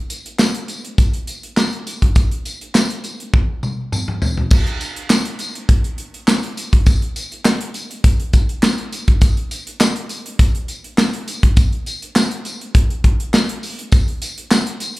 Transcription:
0.10 closed hi-hat, tambourine
0.26 closed hi-hat
0.39 snare, clap, tambourine
0.55 closed hi-hat
0.68 closed hi-hat, tambourine
0.85 closed hi-hat
0.98 kick, closed hi-hat, tambourine
1.14 closed hi-hat
1.27 closed hi-hat, tambourine
1.43 closed hi-hat
1.57 snare, clap, tambourine
1.72 closed hi-hat
1.87 closed hi-hat, tambourine
2.02 kick, closed hi-hat
2.15 kick, closed hi-hat, tambourine
2.31 closed hi-hat
2.45 closed hi-hat, tambourine
2.61 closed hi-hat
2.75 snare, clap, tambourine
2.90 closed hi-hat
3.04 closed hi-hat, tambourine
3.20 closed hi-hat
3.34 kick, high tom
3.63 mid tom, tambourine
3.92 mid tom, tambourine
4.08 mid tom
4.22 floor tom, tambourine
4.37 floor tom
4.51 kick, crash, tambourine
4.67 closed hi-hat
4.81 closed hi-hat, tambourine
4.96 closed hi-hat
5.10 snare, clap, tambourine
5.25 closed hi-hat
5.39 closed hi-hat, tambourine
5.55 closed hi-hat
5.69 kick, closed hi-hat
5.84 closed hi-hat
5.98 closed hi-hat
6.14 closed hi-hat
6.28 snare, clap, tambourine
6.43 closed hi-hat
6.57 closed hi-hat, tambourine
6.73 kick, closed hi-hat
6.86 kick, closed hi-hat, tambourine
7.02 closed hi-hat
7.16 closed hi-hat, tambourine
7.32 closed hi-hat
7.45 snare, clap, tambourine
7.61 closed hi-hat
7.74 closed hi-hat, tambourine
7.91 closed hi-hat
8.04 kick, closed hi-hat, tambourine
8.20 closed hi-hat
8.33 kick, closed hi-hat, tambourine
8.49 closed hi-hat
8.63 snare, clap, tambourine
8.78 closed hi-hat
8.93 closed hi-hat, tambourine
9.08 kick, closed hi-hat
9.21 kick, closed hi-hat, tambourine
9.37 closed hi-hat
9.51 closed hi-hat, tambourine
9.67 closed hi-hat
9.80 snare, clap, tambourine
9.96 closed hi-hat
10.09 closed hi-hat, tambourine
10.26 closed hi-hat
10.39 kick, closed hi-hat, tambourine
10.55 closed hi-hat
10.68 closed hi-hat, tambourine
10.84 closed hi-hat
10.98 snare, clap, tambourine
11.13 closed hi-hat
11.28 closed hi-hat, tambourine
11.43 kick, closed hi-hat
11.56 kick, closed hi-hat, tambourine
11.72 closed hi-hat
11.86 closed hi-hat, tambourine
12.02 closed hi-hat
12.16 snare, clap, tambourine
12.31 closed hi-hat
12.45 closed hi-hat, tambourine
12.61 closed hi-hat
12.75 kick, closed hi-hat
12.90 closed hi-hat
13.04 kick, closed hi-hat
13.20 closed hi-hat
13.34 snare, clap, tambourine
13.49 closed hi-hat
13.63 open hi-hat, tambourine
13.79 closed hi-hat
13.92 kick, closed hi-hat, tambourine
14.08 closed hi-hat
14.22 closed hi-hat, tambourine
14.38 closed hi-hat
14.51 snare, clap, tambourine
14.67 closed hi-hat
14.80 closed hi-hat, tambourine
14.97 closed hi-hat

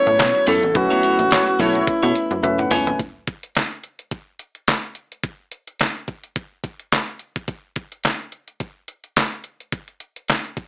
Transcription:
Already playing: C#3 F#3 A3 B3 C#4 E4 B4 C#5
0.07 A2, muted clean electric guitar stroke, closed hi-hat
0.19 B2, muted clean electric guitar stroke, snare, clap, closed hi-hat
0.35 muted clean electric guitar stroke
0.47 F#2 B3 E4 A4 C#5, open hi-hat
0.63 A1, muted clean electric guitar stroke, closed hi-hat
0.74 B1 A3 C#4 E4 F#4 B4, muted clean electric guitar stroke, kick, closed hi-hat
0.90 B3 E4 A4 C#5, closed hi-hat
1.03 B3 E4 A4 C#5, closed hi-hat
1.19 A#1, muted clean electric guitar stroke, closed hi-hat
1.31 A3 F#4 C#5, snare, clap, closed hi-hat
1.47 muted clean electric guitar stroke, closed hi-hat
1.59 B1 A3 B3 E4 F#4 A4 C#5, kick, open hi-hat
1.75 muted clean electric guitar stroke, closed hi-hat
1.87 B2, muted clean electric guitar stroke, kick, closed hi-hat
2.03 B2 B3 E4 A4 C#5, closed hi-hat
2.15 muted clean electric guitar stroke, closed hi-hat
2.31 F#2, muted clean electric guitar stroke, closed hi-hat
2.43 F#2 A3 C#4 E4 B4 E5, muted clean electric guitar stroke, closed hi-hat, high tom
2.59 F#5, muted clean electric guitar stroke, mid tom
2.71 C#2 B3 E4 A4 C#5 G#5, mid tom, open hi-hat
2.87 muted clean electric guitar stroke, closed hi-hat, floor tom
2.99 kick, closed hi-hat
3.27 kick, closed hi-hat
3.43 closed hi-hat
3.55 snare, clap, closed hi-hat
3.83 closed hi-hat
3.99 closed hi-hat
4.11 kick, closed hi-hat
4.39 closed hi-hat
4.55 closed hi-hat
4.68 snare, clap, closed hi-hat
4.95 closed hi-hat
5.12 closed hi-hat
5.24 kick, closed hi-hat
5.51 closed hi-hat
5.67 closed hi-hat
5.79 snare, clap, closed hi-hat
6.08 kick, closed hi-hat
6.24 closed hi-hat
6.36 kick, closed hi-hat
6.64 kick, closed hi-hat
6.80 closed hi-hat
6.92 snare, clap, closed hi-hat
7.19 closed hi-hat
7.36 kick, closed hi-hat
7.48 kick, closed hi-hat
7.76 kick, closed hi-hat
7.92 closed hi-hat
8.04 snare, clap, closed hi-hat
8.32 closed hi-hat
8.48 closed hi-hat
8.60 kick, closed hi-hat
8.88 closed hi-hat
9.04 closed hi-hat
9.16 snare, clap, closed hi-hat
9.44 closed hi-hat
9.60 closed hi-hat
9.72 kick, closed hi-hat
9.88 closed hi-hat
10.00 closed hi-hat
10.16 closed hi-hat
10.28 snare, clap, closed hi-hat
10.45 closed hi-hat
10.57 kick, closed hi-hat

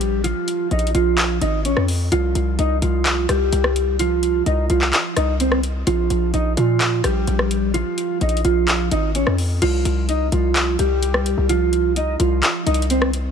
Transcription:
Already playing: A#1 G3 G4
0.01 closed hi-hat
0.24 F3 F4, closed hi-hat
0.48 closed hi-hat
0.71 A#1 D#4 D#5, closed hi-hat
0.79 closed hi-hat
0.87 closed hi-hat
0.95 A#1 F3 F4, closed hi-hat
1.18 clap, closed hi-hat
1.41 G#1 D#4 D#5, closed hi-hat
1.65 C#4 C#5, closed hi-hat
1.77 F2, cross-stick
1.88 open hi-hat
2.12 C2 F3 F4, closed hi-hat
2.35 C2, closed hi-hat
2.59 C2 D#4 D#5, closed hi-hat
2.82 C2 F3 F4, closed hi-hat
3.06 clap, closed hi-hat
3.29 C2 G3 G4, cross-stick, closed hi-hat
3.52 C2, closed hi-hat
3.64 cross-stick
3.76 closed hi-hat
3.99 F3 F4, closed hi-hat
4.23 closed hi-hat
4.46 C2 D#4 D#5, closed hi-hat
4.70 C2 F3 F4, closed hi-hat
4.81 clap
4.93 clap, closed hi-hat
5.16 C2 D#4 D#5, cross-stick, closed hi-hat
5.40 C4 C5, closed hi-hat
5.52 cross-stick
5.63 closed hi-hat
5.87 A#1 F3 F4, closed hi-hat
6.10 A#1, closed hi-hat
6.34 A#1 D#4 D#5, closed hi-hat
6.57 A#2 F3 F4, closed hi-hat
6.81 clap, closed hi-hat
7.04 A#1 G3 G4, cross-stick, closed hi-hat
7.27 A#1, closed hi-hat
7.39 cross-stick
7.51 closed hi-hat
7.74 F3 F4, closed hi-hat
7.98 closed hi-hat
8.21 A#1 D#4 D#5, closed hi-hat
8.29 closed hi-hat
8.37 closed hi-hat
8.45 A#1 F3 F4, closed hi-hat
8.68 clap, closed hi-hat
8.91 G#1 D#4 D#5, closed hi-hat
9.15 C#4 C#5, closed hi-hat
9.27 F2, cross-stick
9.38 open hi-hat
9.62 C2 F3 F4, closed hi-hat, crash
9.85 C2, closed hi-hat
10.09 D#4 D#5, closed hi-hat
10.32 C2 F3 F4, closed hi-hat
10.56 clap, closed hi-hat
10.79 C2 G3 G4, closed hi-hat
11.03 closed hi-hat
11.14 cross-stick
11.26 closed hi-hat
11.38 C2
11.49 F3 F4, closed hi-hat
11.73 closed hi-hat
11.96 D#4 D#5, closed hi-hat
12.20 C2 F3 F4, closed hi-hat
12.43 clap, closed hi-hat
12.66 C2 D#4 D#5, closed hi-hat
12.74 closed hi-hat
12.82 closed hi-hat
12.90 C4 C5, closed hi-hat
13.02 cross-stick
13.13 closed hi-hat

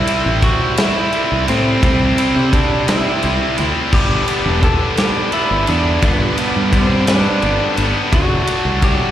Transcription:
Already playing: C3 E4
0.07 G3 C4 E4, ride
0.26 A1
0.42 C3 G3 C4 E4 F#4, kick, ride
0.77 G3 C4 E4, snare, ride
1.13 C3 G3 C4 E4, ride
1.32 C2
1.48 A2 G3 C4 E4, ride
1.83 C2 C3 G3 C4 E4, kick, ride
2.18 G3 C4 E4, ride
2.36 C3
2.52 C3 G3 C4 D4 E4, kick, ride
2.88 G3 C4 E4, snare, ride
3.23 C2 C3 G3 C4 E4, ride
3.58 D2 G3 C4 E4, ride
3.92 G1 G2 D3 G3 B3 D4 G4, kick, crash
4.28 G3 B3 D4, ride
4.46 E1
4.62 D3 G3 B3 D4 A4, kick, ride
4.97 G3 B3 D4 G4, snare, ride
5.32 D3 G3 B3 D4 E4, ride
5.51 G1
5.67 E2 G3 B3 D4, ride
6.02 G1 G2 D3 G3 B3 D4, kick, ride
6.38 G3 B3 D4, ride
6.56 G2
6.72 D3 G3 B3 C4 D4, kick, ride
7.07 G3 B3 D4, snare, ride
7.42 G1 D3 G3 B3 D4, ride
7.77 G1 G3 B3 D4, ride
8.12 F#1 F#3 A3 D4 F#4, kick, ride
8.47 A3 D4 F#4, ride
8.65 C2
8.82 F#3 A3 D4 F#4 G4, kick, ride

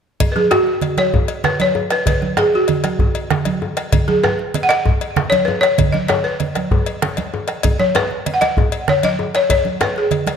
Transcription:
0.20 bombo low, cowbell, low conga, djembe bass
0.32 G#4 B4
0.36 bombo rim, high conga
0.51 F#4, bombo rim, cowbell, djembe slap, high conga, djembe tone
0.67 djembe slap, high conga
0.81 bombo rim, cowbell, low conga
0.97 C#5, bombo rim, cowbell, high conga
1.13 bombo low, high conga, djembe tone, djembe bass
1.28 cowbell
1.44 B4, bombo rim, djembe slap, low conga
1.60 C#5, bombo rim, cowbell, high conga
1.75 djembe tone
1.90 B4, bombo rim, cowbell
2.06 B4, bombo low, cowbell, djembe bass, low conga
2.22 bombo rim, high conga
2.37 G#4, bombo rim, cowbell, djembe slap, djembe tone
2.53 F#4, djembe slap, high conga
2.68 bombo rim, cowbell, low conga
2.84 bombo rim, cowbell, high conga
2.99 bombo low, high conga, djembe tone, djembe bass
3.15 cowbell
3.30 bombo rim, djembe slap, low conga
3.45 bombo rim, cowbell, high conga
3.62 djembe tone
3.77 bombo rim, cowbell, djembe slap
3.92 bombo low, cowbell, djembe bass, low conga
4.08 G#4, bombo rim, high conga
4.24 B4, bombo rim, djembe slap, djembe tone
4.39 djembe slap, high conga
4.54 bombo rim, cowbell, low conga
4.63 F#5
4.69 D#5, bombo rim, cowbell
4.85 bombo low, high conga, djembe tone, djembe bass
5.01 cowbell
5.16 bombo rim, djembe slap, low conga
5.30 C#5, bombo rim, cowbell, high conga
5.45 B4, djembe tone
5.61 C#5, bombo rim, cowbell, djembe slap
5.78 bombo low, cowbell, djembe slap, low conga, djembe bass
5.92 D#5, bombo rim, high conga
6.08 C#5, bombo rim, cowbell, djembe slap, djembe tone
6.24 B4, djembe slap
6.40 cowbell, low conga
6.55 bombo rim, cowbell, high conga
6.71 bombo rim, bombo low, djembe tone, djembe bass
6.86 cowbell, djembe slap
7.02 bombo rim, djembe slap, high conga, low conga
7.17 bombo rim, cowbell, djembe slap, high conga
7.33 bombo rim, djembe tone
7.48 bombo rim, cowbell, high conga
7.63 bombo low, cowbell, low conga, djembe bass
7.80 C#5, bombo rim, high conga
7.95 B4, bombo rim, cowbell, djembe slap, djembe tone
8.11 djembe slap, high conga
8.26 bombo rim, cowbell, low conga
8.34 F#5
8.41 D#5, bombo rim, cowbell, high conga
8.57 bombo low, high conga, djembe tone, djembe bass
8.72 cowbell
8.88 C#5, bombo rim, low conga
9.03 D#5, bombo rim, cowbell, high conga
9.19 djembe tone
9.35 C#5, bombo rim, cowbell, djembe slap
9.50 C#5, bombo low, cowbell, djembe bass, low conga
9.65 bombo rim, high conga
9.80 B4, bombo rim, cowbell, djembe slap, high conga, djembe tone
9.96 G#4, djembe slap, high conga
10.11 bombo rim, cowbell, low conga
10.27 bombo rim, cowbell, high conga

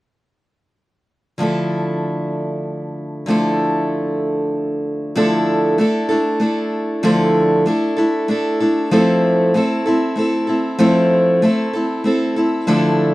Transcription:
1.38 D3 F3 A3 D4 E4
1.43 A4
3.26 D3 F3 A3 D4
3.30 E4 A4
5.16 D3 F3 A3 D4 E4 A4
5.78 A3 D4 E4 A4
6.09 A3 D4 E4 A4
6.40 A3 D4 E4 A4
7.03 D3 F3 A3 D4 E4 A4
7.66 A3 D4 E4 A4
7.97 A3 D4 E4 A4
8.28 A3 D4 E4 A4
8.60 A3 D4 E4 A4
8.91 F3 A3 C4 E4 A4
9.54 A3 C4 E4 A4
9.86 C4 E4 A4
10.16 A3 C4 E4 A4
10.47 C4 E4 A4
10.79 F3 A3 C4 E4 A4
11.42 A3 C4 E4 A4
11.73 C4 E4 A4
12.04 A3 C4 E4 A4
12.36 C4 E4 A4
12.67 D3 F3 A3 D4 E4 A4

